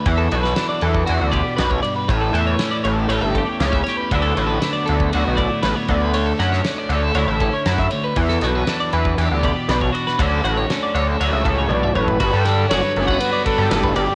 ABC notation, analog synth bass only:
X:1
M:4/4
L:1/16
Q:1/4=119
K:Bm
V:1 name="Analog synth bass" clef=bass
E,,2 B,,,2 z2 E,,2 E,, D,,2 z B,,,2 z2 | A,,,2 E,,2 z2 A,,,2 A,,, G,,,2 z C,,2 z2 | D,,2 A,,,2 z2 D,,2 D,, B,,,2 z A,,, z D,,2- | D,,2 F,,2 z2 D,,2 D,, A,,,2 z F,,2 z2 |
E,,2 B,,,2 z2 E,,2 E,, D,,2 z B,,,2 z2 | D,,2 A,,,2 z2 D,,2 D,, C,, C,,2 B,,,2 A,,,2 | G,,, G,,3 F,,, z F,,,2 z3 G,, G,,,2 G,,, z |]